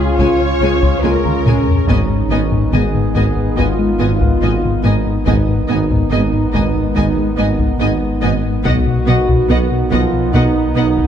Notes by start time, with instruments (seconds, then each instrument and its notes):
Already playing: sub bass C#2, trombone section C#3 C#4, ambient pad G#3 C#4 G#4, french horn section F4, duduk F4, violin section G#4
0.00 analog synth bass C#2
0.19 double bass section C#2, analog synth bass C#2, tuba C#2, cello section C#3, viola section G#3, violin section C#5 G#5, taiko
0.41 analog synth bass C#3
0.61 double bass section C#2, tuba C#2, analog synth bass C#2, cello section C#3, viola section G#3, violin section G#5
0.83 analog synth bass C#2, taiko
1.03 double bass section C#2, tuba C#2, analog synth bass C#2, cello section C#3, viola section G#3, violin section A#4 G#5, taiko high
1.25 analog synth bass C#2, taiko mid
1.46 double bass section C#2, tuba C#2, analog synth bass C#2, cello section C#3, viola section G#3, french horn section C#4, duduk C#4, violin section G#5, taiko low-mid
1.68 analog synth bass C#2, taiko low
1.88 sub bass G#1, double bass section G#1, tuba G#1, analog synth bass G#2, cello section G#2, trombone section D#3, ambient pad G#3 B3 D#4 B4, viola section B3, duduk D#4, french horn section D#4, violin section D#5 G#5, taiko
2.09 analog synth bass G#2
2.30 double bass section G#1, tuba G#1, analog synth bass G#2, cello section G#2, viola section B3, violin section D#5 G#5
2.52 analog synth bass G#2, taiko
2.72 double bass section G#1, tuba G#1, cello section G#2, analog synth bass G#3, trombone section B3, viola section B3, duduk G#4, french horn section G#4, violin section D#5 G#5, taiko mid
2.94 analog synth bass G#2, taiko mid
3.15 double bass section G#1, tuba G#1, cello section G#2, analog synth bass G#2, viola section B3, violin section D#5 G#5, taiko
3.37 analog synth bass G#2
3.57 double bass section G#1, tuba G#1, analog synth bass G#2, cello section G#2, viola section B3, duduk F4, french horn section F4, violin section D#5 G#5, taiko
3.79 analog synth bass G#3
3.99 double bass section G#1, tuba G#1, analog synth bass G#2, cello section G#2, viola section B3, violin section D#5 G#5
4.20 analog synth bass G#2, taiko
4.42 double bass section G#1, tuba G#1, cello section G#2, analog synth bass G#2, viola section B3, violin section D#5 G#5
4.64 analog synth bass G#2, taiko mid
4.84 double bass section G#1, tuba G#1, cello section G#2, analog synth bass G#2, viola section B3, duduk D#4, french horn section D#4, violin section D#5 G#5
5.06 analog synth bass G#2
5.26 sub bass G#1, tuba G#1, double bass section G#1, cello section G#2, analog synth bass G#2, trombone section D#3 B3, ambient pad G#3 B3 D#4 B4, viola section B3, duduk D#4, french horn section D#4, violin section D#5 G#5, taiko
5.48 analog synth bass G#2
5.68 double bass section G#1, tuba G#1, cello section G#2, analog synth bass G#2, viola section B3, violin section D#5 G#5
5.91 analog synth bass G#2, taiko
6.11 double bass section G#1, tuba G#1, cello section G#2, analog synth bass G#3, viola section B3, violin section D#5 G#5
6.33 analog synth bass G#2
6.53 tuba G#1, double bass section G#1, cello section G#2, analog synth bass G#2, viola section B3, violin section D#5 G#5, taiko
6.75 analog synth bass G#2
6.95 double bass section G#1, tuba G#1, cello section G#2, analog synth bass G#2, viola section B3, violin section D#5 G#5, taiko
7.17 analog synth bass G#3
7.37 tuba G#1, double bass section G#1, analog synth bass G#2, cello section G#2, viola section B3, violin section D#5 G#5
7.59 analog synth bass G#2, taiko
7.80 double bass section G#1, tuba G#1, cello section G#2, analog synth bass G#2, viola section B3, violin section D#5 G#5
8.02 analog synth bass G#2
8.22 tuba G#1, double bass section G#1, analog synth bass G#2, cello section G#2, viola section B3, violin section D#5 G#5
8.44 analog synth bass G#2
8.64 double bass section B1, tuba B1, sub bass B1, cello section B2, analog synth bass B2, trombone section D#3 B3, ambient pad F#3 B3 D#4 B4, viola section B3, duduk F#4, french horn section F#4, violin section D#5 F#5, taiko
8.86 analog synth bass B2
9.06 double bass section B1, tuba B1, cello section B2, analog synth bass B2, viola section B3, violin section D#5 F#5
9.28 analog synth bass B2, taiko
9.49 double bass section B1, tuba B1, cello section B2, viola section B3, analog synth bass B3, violin section D#5 F#5
9.71 analog synth bass B2
9.91 double bass section B1, tuba B1, cello section B2, analog synth bass B2, french horn section F3, viola section B3, duduk F4, violin section D#5 F#5, taiko
10.13 analog synth bass B2
10.33 double bass section B1, tuba B1, cello section B2, analog synth bass B2, viola section B3, duduk D#4, french horn section D#4, violin section D#5 F#5, taiko
10.56 analog synth bass B3
10.75 double bass section B1, tuba B1, cello section B2, analog synth bass B2, viola section B3, violin section D#5 F#5
10.97 analog synth bass B2, taiko